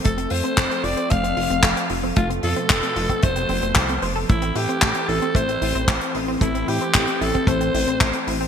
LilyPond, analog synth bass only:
\new Staff \with { instrumentName = "Analog synth bass" } { \clef bass \time 4/4 \key a \minor \tempo 4 = 113 f,,8 f,16 r16 f,,16 r16 f,,16 r16 f,,8 f,,16 f,,16 f,,16 r16 f,,8 | f,,8 f,16 r16 f,,16 r16 f,,16 r16 f,,8 f,,16 f,,16 c,8 f,,8 | a,,8 a,16 r16 a,,16 r16 a,,16 r16 a,,8 a,,16 a,,16 a,,16 r16 a,,8 | a,,8 a,16 r16 a,,16 r16 a,,16 r16 a,,8 a,,16 a,,16 a,,16 r16 a,,8 | }